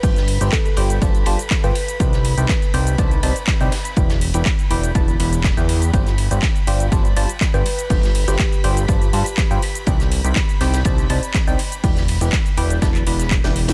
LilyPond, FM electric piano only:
\new Staff \with { instrumentName = "FM electric piano" } { \time 4/4 \key g \mixolydian \tempo 4 = 122 <g f' c'' d'' g''>8 r16 <g f' c'' d'' g''>16 r8 <g f' c'' d'' g''>8 <g f' c'' d'' a''>8 <g f' c'' d'' a''>16 r8 <f' c'' d'' g''>16 r8 | <c ees' c'' d'' g''>8 r16 <c ees' c'' d'' g''>16 r8 <c ees' c'' d'' g''>8 <c ees' c'' d'' a''>8 <c ees' c'' d'' a''>16 r8 <c ees' c'' d'' g''>16 r8 | <e e' b' d'' g''>8 r16 <e e' b' d'' g''>16 r8 <e e' b' d'' g''>8 <e e' b' d'' a''>8 <e e' b' d'' b''>8 r16 <e e' b' d'' g''>8. | <g f' c'' d'' g''>8 r16 <g f' c'' d'' g''>16 r8 <g f' c'' d'' g''>8 <g f' c'' d'' a''>8 <g f' c'' d'' a''>16 r8 <g f' c'' d'' g''>16 r8 |
<g f' c'' d'' g''>8 r16 <g f' c'' d'' g''>16 r8 <g f' c'' d'' g''>8 <g f' c'' d'' a''>8 <g f' c'' d'' a''>16 r8 <f' c'' d'' g''>16 r8 | <c ees' c'' d'' g''>8 r16 <c ees' c'' d'' g''>16 r8 <c ees' c'' d'' g''>8 <c ees' c'' d'' a''>8 <c ees' c'' d'' a''>16 r8 <c ees' c'' d'' g''>16 r8 | <e e' b' d'' g''>8 r16 <e e' b' d'' g''>16 r8 <e e' b' d'' g''>8 <e e' b' d'' a''>8 <e e' b' d'' b''>8 r16 <e e' b' d'' g''>8. | }